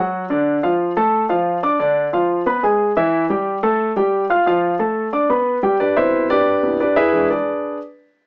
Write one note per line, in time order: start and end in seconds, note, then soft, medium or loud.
0.00 0.24 F#3 medium
0.00 0.24 F#4 medium
0.00 0.24 F#5 medium
0.30 0.57 D3 medium
0.30 0.57 D4 medium
0.30 0.58 D5 medium
0.63 0.90 F3 medium
0.63 0.91 F4 medium
0.63 0.91 F5 medium
0.97 1.24 A3 medium
0.97 1.24 A4 medium
0.97 1.24 A5 medium
1.29 1.57 F3 medium
1.29 1.57 F4 medium
1.29 1.57 F5 medium
1.63 1.76 D4 medium
1.63 1.77 D5 medium
1.63 1.77 D6 medium
1.79 2.07 D3 medium
1.79 2.07 D4 medium
1.79 2.07 D5 medium
2.13 2.40 F3 medium
2.13 2.40 F4 medium
2.13 2.41 F5 medium
2.46 2.60 B3 medium
2.46 2.60 B4 medium
2.46 2.60 B5 medium
2.63 2.90 G#3 medium
2.63 2.90 G#4 medium
2.63 2.91 G#5 medium
2.97 3.24 E3 medium
2.97 3.24 E4 medium
2.97 3.24 E5 medium
3.30 3.57 G3 medium
3.30 3.57 G4 medium
3.30 3.57 G5 medium
3.63 3.90 A3 medium
3.63 3.90 A4 medium
3.63 3.91 A5 medium
3.96 4.23 G3 medium
3.96 4.24 G4 medium
3.96 4.24 G5 medium
4.30 4.43 F4 medium
4.30 4.44 F5 medium
4.30 4.44 F6 medium
4.46 4.74 F3 medium
4.46 4.74 F4 medium
4.46 4.74 F5 medium
4.79 5.07 A3 medium
4.79 5.07 A4 medium
4.79 5.07 A5 medium
5.13 5.26 D4 medium
5.13 5.27 D5 medium
5.13 5.27 D6 medium
5.30 5.57 B3 medium
5.30 5.57 B4 medium
5.30 5.57 B5 medium
5.63 5.76 G3 medium
5.63 5.77 G4 medium
5.63 5.77 G5 medium
5.80 5.96 D4 medium
5.80 5.96 G4 medium
5.80 5.96 B4 medium
5.80 5.96 D5 medium
5.96 6.44 B2 soft
5.96 6.44 C3 soft
5.96 6.28 E4 medium
5.96 6.28 B4 medium
5.96 6.28 C5 medium
5.96 6.27 E5 medium
6.30 6.77 D4 medium
6.30 6.77 G4 medium
6.30 6.77 B4 medium
6.30 6.76 D5 loud
6.62 6.78 C3 soft
6.62 6.78 B3 soft
6.62 6.78 E4 soft
6.80 6.96 D4 medium
6.80 6.97 G4 medium
6.80 6.95 B4 medium
6.80 6.96 D5 medium
6.96 7.28 E4 medium
6.96 7.28 G#4 medium
6.96 7.28 B4 medium
6.96 7.27 E5 medium
7.12 7.35 E3 medium
7.12 7.35 G#3 soft
7.12 7.29 D4 medium
7.30 7.77 D4 medium
7.30 7.77 G#4 medium
7.30 7.77 B4 medium
7.30 7.77 D5 medium